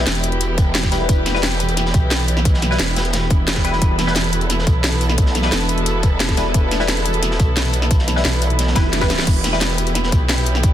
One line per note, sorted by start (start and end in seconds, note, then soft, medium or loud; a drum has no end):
0.00 10.73 E3 medium
0.00 10.73 B3 medium
0.00 10.73 E4 medium
0.00 3.79 G4 medium
0.07 0.90 E1 loud
0.07 snare loud
0.07 closed hi-hat medium
0.14 closed hi-hat soft
0.23 closed hi-hat medium
0.32 closed hi-hat soft
0.41 closed hi-hat loud
0.41 closed hi-hat medium
0.58 kick loud
0.58 closed hi-hat medium
0.75 snare loud
0.75 closed hi-hat medium
0.83 kick medium
0.83 snare soft
0.83 closed hi-hat soft
0.91 1.08 E1 loud
0.91 1.32 G3 medium
0.91 1.32 E4 medium
0.91 1.32 B4 medium
0.91 snare medium
0.91 closed hi-hat medium
1.09 1.93 E1 loud
1.09 kick loud
1.09 closed hi-hat medium
1.26 snare soft
1.26 closed hi-hat medium
1.34 1.41 G3 loud
1.34 1.41 E4 medium
1.34 1.41 B4 loud
1.34 snare medium
1.43 snare loud
1.43 closed hi-hat medium
1.52 closed hi-hat soft
1.60 closed hi-hat medium
1.69 closed hi-hat soft
1.77 snare soft
1.77 closed hi-hat medium
1.77 closed hi-hat loud
1.86 snare soft
1.94 2.78 B1 loud
1.94 kick loud
1.94 closed hi-hat medium
2.11 snare loud
2.11 closed hi-hat medium
2.20 closed hi-hat soft
2.28 closed hi-hat medium
2.37 snare soft
2.37 closed hi-hat soft
2.45 kick loud
2.45 closed hi-hat medium
2.54 snare soft
2.62 snare soft
2.62 closed hi-hat medium
2.71 2.77 G3 medium
2.71 2.77 E4 medium
2.71 2.77 B4 loud
2.71 snare medium
2.79 3.29 E1 medium
2.79 snare loud
2.79 closed hi-hat medium
2.88 closed hi-hat soft
2.96 snare loud
2.96 closed hi-hat medium
3.05 closed hi-hat soft
3.13 snare loud
3.13 closed hi-hat medium
3.30 3.80 E1 loud
3.30 kick loud
3.30 closed hi-hat medium
3.47 snare loud
3.47 closed hi-hat medium
3.56 kick medium
3.56 snare soft
3.56 closed hi-hat soft
3.64 4.05 G3 medium
3.64 4.05 E4 medium
3.64 4.05 B4 medium
3.64 closed hi-hat medium
3.73 snare soft
3.82 4.66 E1 loud
3.82 9.25 A4 medium
3.82 kick loud
3.82 closed hi-hat medium
3.99 snare soft
3.99 closed hi-hat medium
4.07 4.14 G3 loud
4.07 4.13 E4 medium
4.07 4.14 B4 loud
4.07 snare soft
4.15 snare loud
4.15 closed hi-hat medium
4.24 closed hi-hat soft
4.33 closed hi-hat medium
4.41 closed hi-hat soft
4.50 snare soft
4.50 closed hi-hat medium
4.59 snare soft
4.67 5.51 B1 loud
4.67 kick loud
4.67 closed hi-hat medium
4.84 snare loud
4.84 closed hi-hat loud
4.84 closed hi-hat medium
4.92 closed hi-hat soft
5.01 closed hi-hat medium
5.09 snare soft
5.09 closed hi-hat soft
5.18 kick loud
5.18 closed hi-hat medium
5.26 snare soft
5.35 snare soft
5.35 closed hi-hat medium
5.42 5.50 G3 medium
5.42 5.50 E4 medium
5.42 5.50 B4 loud
5.42 snare medium
5.52 6.36 E1 loud
5.52 snare loud
5.52 closed hi-hat medium
5.61 closed hi-hat soft
5.69 closed hi-hat medium
5.78 closed hi-hat soft
5.86 closed hi-hat medium
6.03 kick loud
6.03 closed hi-hat medium
6.20 snare loud
6.20 closed hi-hat medium
6.29 kick medium
6.29 snare soft
6.29 closed hi-hat soft
6.37 6.53 E1 loud
6.37 6.78 G3 medium
6.37 6.78 E4 medium
6.37 6.78 B4 medium
6.37 snare soft
6.37 closed hi-hat medium
6.54 7.38 E1 loud
6.54 kick loud
6.54 closed hi-hat medium
6.54 closed hi-hat loud
6.71 snare soft
6.71 closed hi-hat medium
6.80 6.86 G3 loud
6.80 6.86 E4 medium
6.80 6.86 B4 loud
6.80 snare soft
6.88 snare loud
6.88 closed hi-hat medium
6.97 closed hi-hat soft
7.06 closed hi-hat medium
7.13 closed hi-hat soft
7.23 snare soft
7.23 closed hi-hat loud
7.23 closed hi-hat medium
7.31 snare soft
7.40 8.23 B1 loud
7.40 kick loud
7.40 closed hi-hat medium
7.57 snare loud
7.57 closed hi-hat loud
7.57 closed hi-hat medium
7.65 closed hi-hat soft
7.73 closed hi-hat medium
7.82 snare soft
7.82 closed hi-hat soft
7.91 kick loud
7.91 closed hi-hat loud
7.91 closed hi-hat medium
7.99 snare soft
8.08 snare soft
8.08 closed hi-hat medium
8.16 8.23 G3 medium
8.16 8.23 E4 medium
8.16 8.23 B4 loud
8.16 snare medium
8.25 8.75 B1 loud
8.25 snare loud
8.25 closed hi-hat medium
8.33 closed hi-hat soft
8.42 closed hi-hat medium
8.50 closed hi-hat soft
8.59 snare soft
8.59 closed hi-hat loud
8.59 closed hi-hat medium
8.59 swell medium
8.67 snare soft
8.75 9.26 F1 loud
8.75 8.86 G3 medium
8.75 8.86 E4 medium
8.75 8.86 B4 medium
8.75 kick loud
8.75 snare loud
8.75 closed hi-hat medium
8.93 snare medium
8.93 closed hi-hat medium
8.93 closed hi-hat loud
9.01 9.08 G3 medium
9.01 9.08 E4 medium
9.01 9.08 B4 loud
9.01 kick medium
9.01 snare medium
9.01 closed hi-hat soft
9.10 snare loud
9.10 snare medium
9.10 closed hi-hat medium
9.18 snare medium
9.18 snare loud
9.18 closed hi-hat medium
9.27 10.11 E1 loud
9.27 10.73 G4 medium
9.27 kick loud
9.27 closed hi-hat medium
9.27 crash medium
9.44 snare soft
9.44 closed hi-hat medium
9.53 9.59 G3 loud
9.53 9.59 E4 medium
9.53 9.59 B4 loud
9.53 snare medium
9.61 snare loud
9.61 closed hi-hat medium
9.70 closed hi-hat soft
9.78 closed hi-hat medium
9.87 closed hi-hat soft
9.95 snare medium
9.95 closed hi-hat loud
9.95 closed hi-hat medium
10.04 snare soft
10.12 10.73 B1 loud
10.12 kick loud
10.12 closed hi-hat medium
10.29 snare loud
10.29 closed hi-hat medium
10.29 closed hi-hat loud
10.38 closed hi-hat soft
10.46 closed hi-hat medium
10.55 snare medium
10.55 closed hi-hat soft
10.63 kick loud
10.63 closed hi-hat medium